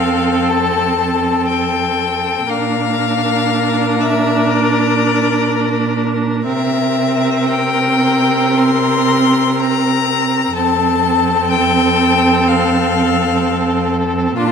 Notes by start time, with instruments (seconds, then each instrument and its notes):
Already playing: cello F2, viola C4, violin A4 F5
0.49 violin A5
1.49 violin G5
2.49 cello A#2, viola D4, violin A#4 F5
4.01 violin E5
4.50 violin D5
6.46 cello C3, viola C4, violin A#4 E5
7.46 violin G5
8.57 violin C6
9.59 violin A#5
10.55 cello F2, viola C4, violin A4 A5
11.50 violin G5
12.48 violin F5
14.38 cello A#2, viola D4, violin F4 A5